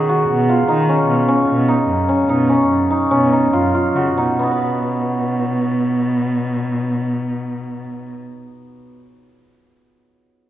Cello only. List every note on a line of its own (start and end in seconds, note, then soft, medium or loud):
0.00 0.23 D#3 medium
0.29 0.63 B2 medium
0.69 1.02 D#3 medium
1.08 1.42 B2 medium
1.49 1.82 B2 medium
1.88 2.22 F#2 medium
2.28 2.63 B2 medium
2.68 3.04 F#2 medium
3.10 3.46 B2 medium
3.52 3.88 F#2 medium
3.95 4.15 C#3 soft
4.16 4.36 B2 soft
4.38 8.21 B2 medium